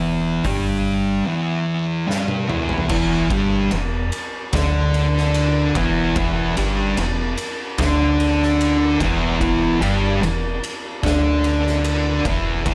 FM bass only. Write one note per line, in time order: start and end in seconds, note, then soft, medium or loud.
0.00 0.41 E1 medium
0.44 1.22 G1 medium
2.90 3.28 E1 medium
3.30 3.68 G1 medium
3.72 4.10 E1 medium
4.53 5.71 D2 loud
5.75 6.13 E1 loud
6.16 6.54 E1 medium
6.57 6.95 G1 loud
6.97 7.35 E1 medium
7.79 8.97 D2 medium
9.00 9.38 E1 loud
9.40 9.79 E1 medium
9.81 10.19 G1 loud
10.21 10.60 E1 medium
11.03 12.21 D2 loud
12.25 12.63 E1 loud
12.66 12.74 E1 medium